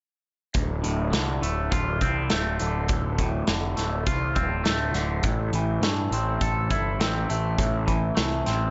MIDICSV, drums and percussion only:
0, 0, Header, 1, 2, 480
1, 0, Start_track
1, 0, Key_signature, -1, "minor"
1, 0, Tempo, 585366
1, 448, Time_signature, 4, 2, 24, 8
1, 7136, End_track
2, 0, Start_track
2, 0, Title_t, "Drums"
2, 443, Note_on_c, 9, 42, 69
2, 450, Note_on_c, 9, 36, 89
2, 525, Note_off_c, 9, 42, 0
2, 532, Note_off_c, 9, 36, 0
2, 688, Note_on_c, 9, 42, 55
2, 770, Note_off_c, 9, 42, 0
2, 928, Note_on_c, 9, 42, 70
2, 931, Note_on_c, 9, 38, 84
2, 1010, Note_off_c, 9, 42, 0
2, 1013, Note_off_c, 9, 38, 0
2, 1174, Note_on_c, 9, 42, 55
2, 1256, Note_off_c, 9, 42, 0
2, 1410, Note_on_c, 9, 36, 94
2, 1410, Note_on_c, 9, 42, 76
2, 1492, Note_off_c, 9, 36, 0
2, 1492, Note_off_c, 9, 42, 0
2, 1648, Note_on_c, 9, 42, 55
2, 1651, Note_on_c, 9, 36, 64
2, 1730, Note_off_c, 9, 42, 0
2, 1733, Note_off_c, 9, 36, 0
2, 1884, Note_on_c, 9, 42, 72
2, 1887, Note_on_c, 9, 38, 88
2, 1966, Note_off_c, 9, 42, 0
2, 1969, Note_off_c, 9, 38, 0
2, 2128, Note_on_c, 9, 42, 57
2, 2210, Note_off_c, 9, 42, 0
2, 2365, Note_on_c, 9, 42, 71
2, 2372, Note_on_c, 9, 36, 95
2, 2447, Note_off_c, 9, 42, 0
2, 2454, Note_off_c, 9, 36, 0
2, 2610, Note_on_c, 9, 42, 52
2, 2613, Note_on_c, 9, 36, 61
2, 2692, Note_off_c, 9, 42, 0
2, 2695, Note_off_c, 9, 36, 0
2, 2847, Note_on_c, 9, 42, 63
2, 2850, Note_on_c, 9, 38, 92
2, 2929, Note_off_c, 9, 42, 0
2, 2932, Note_off_c, 9, 38, 0
2, 3092, Note_on_c, 9, 42, 55
2, 3096, Note_on_c, 9, 38, 28
2, 3174, Note_off_c, 9, 42, 0
2, 3178, Note_off_c, 9, 38, 0
2, 3333, Note_on_c, 9, 42, 68
2, 3335, Note_on_c, 9, 36, 90
2, 3415, Note_off_c, 9, 42, 0
2, 3417, Note_off_c, 9, 36, 0
2, 3572, Note_on_c, 9, 42, 51
2, 3576, Note_on_c, 9, 36, 66
2, 3654, Note_off_c, 9, 42, 0
2, 3658, Note_off_c, 9, 36, 0
2, 3815, Note_on_c, 9, 42, 64
2, 3819, Note_on_c, 9, 38, 87
2, 3897, Note_off_c, 9, 42, 0
2, 3901, Note_off_c, 9, 38, 0
2, 4053, Note_on_c, 9, 42, 51
2, 4057, Note_on_c, 9, 38, 27
2, 4135, Note_off_c, 9, 42, 0
2, 4139, Note_off_c, 9, 38, 0
2, 4289, Note_on_c, 9, 42, 67
2, 4295, Note_on_c, 9, 36, 89
2, 4371, Note_off_c, 9, 42, 0
2, 4377, Note_off_c, 9, 36, 0
2, 4535, Note_on_c, 9, 42, 50
2, 4617, Note_off_c, 9, 42, 0
2, 4779, Note_on_c, 9, 42, 72
2, 4782, Note_on_c, 9, 38, 92
2, 4861, Note_off_c, 9, 42, 0
2, 4864, Note_off_c, 9, 38, 0
2, 5022, Note_on_c, 9, 42, 54
2, 5104, Note_off_c, 9, 42, 0
2, 5256, Note_on_c, 9, 42, 78
2, 5258, Note_on_c, 9, 36, 97
2, 5338, Note_off_c, 9, 42, 0
2, 5340, Note_off_c, 9, 36, 0
2, 5497, Note_on_c, 9, 42, 55
2, 5499, Note_on_c, 9, 36, 70
2, 5579, Note_off_c, 9, 42, 0
2, 5581, Note_off_c, 9, 36, 0
2, 5745, Note_on_c, 9, 42, 73
2, 5748, Note_on_c, 9, 38, 93
2, 5827, Note_off_c, 9, 42, 0
2, 5830, Note_off_c, 9, 38, 0
2, 5985, Note_on_c, 9, 42, 54
2, 6067, Note_off_c, 9, 42, 0
2, 6220, Note_on_c, 9, 36, 92
2, 6223, Note_on_c, 9, 42, 72
2, 6302, Note_off_c, 9, 36, 0
2, 6305, Note_off_c, 9, 42, 0
2, 6460, Note_on_c, 9, 36, 66
2, 6461, Note_on_c, 9, 42, 54
2, 6542, Note_off_c, 9, 36, 0
2, 6543, Note_off_c, 9, 42, 0
2, 6697, Note_on_c, 9, 42, 73
2, 6700, Note_on_c, 9, 38, 91
2, 6779, Note_off_c, 9, 42, 0
2, 6782, Note_off_c, 9, 38, 0
2, 6940, Note_on_c, 9, 42, 54
2, 6943, Note_on_c, 9, 38, 29
2, 7022, Note_off_c, 9, 42, 0
2, 7025, Note_off_c, 9, 38, 0
2, 7136, End_track
0, 0, End_of_file